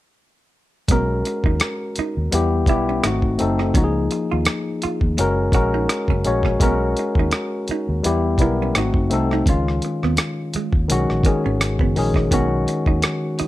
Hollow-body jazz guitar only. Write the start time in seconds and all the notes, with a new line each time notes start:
0.91 B3
1.27 muted hollow-body jazz guitar stroke
1.46 D#4
1.99 D#4
2.34 muted hollow-body jazz guitar stroke
2.69 E4
2.89 C#4
3.05 D#4
3.41 muted hollow-body jazz guitar stroke
3.60 D#4
3.75 C#4
4.12 muted hollow-body jazz guitar stroke
4.32 F4
4.83 F4
5.19 muted hollow-body jazz guitar stroke
5.54 F#4
5.74 D#4
6.10 C#4
6.27 muted hollow-body jazz guitar stroke
6.46 C#4
6.63 B3
6.99 muted hollow-body jazz guitar stroke
7.19 D#4
7.71 D#4
8.07 muted hollow-body jazz guitar stroke
8.42 E4
8.62 C#4
8.78 D#4
9.14 muted hollow-body jazz guitar stroke
9.33 D#4
9.49 C#4
9.85 muted hollow-body jazz guitar stroke
10.04 B3
10.56 G#3
10.92 muted hollow-body jazz guitar stroke
11.26 A#3
11.46 C#4
11.81 B3
11.97 muted hollow-body jazz guitar stroke
12.16 D#4
12.33 B3
12.69 muted hollow-body jazz guitar stroke
12.87 D#4
13.40 D#4